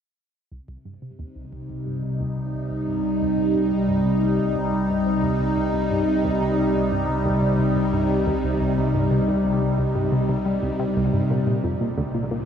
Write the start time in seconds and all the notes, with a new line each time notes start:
0.51 C2 C3
0.68 C2
0.85 G2
1.02 C3
1.12 G3 D#4
1.19 D#2
1.36 C2
1.53 C2
1.70 C2
1.86 G2
2.03 C3
2.20 D#2
2.37 C2
2.54 C2
2.71 C2
2.88 G2
3.04 C3
3.21 D#2
3.38 C2
3.55 C2
3.72 C2
3.89 G2
4.05 C3
4.22 D#2
4.39 C2
4.56 C2
4.73 C2
4.90 G2
5.07 C3
5.24 D#2
5.40 C2
5.57 C2
5.74 C2
5.91 G2
6.08 C3
6.25 D#2
6.41 C2
6.58 C2
6.75 C2
6.92 G2
7.09 C3
7.26 D#2
7.42 C2
7.59 C2
7.76 C2
7.93 G2
8.10 C3
8.27 D#2
8.44 C2
8.61 C2
8.77 C2
8.94 G2
9.11 C3
9.28 D#2
9.45 C2
9.62 C2
9.78 C2
9.95 G2
10.12 C3
10.29 C3
10.46 G3
10.63 C2
10.80 C3
10.96 C2
11.13 G2
11.30 C2 A#2
11.47 A#2
11.64 F2
11.81 A#2
11.87 F3
11.98 D2
12.14 A#2
12.31 A#2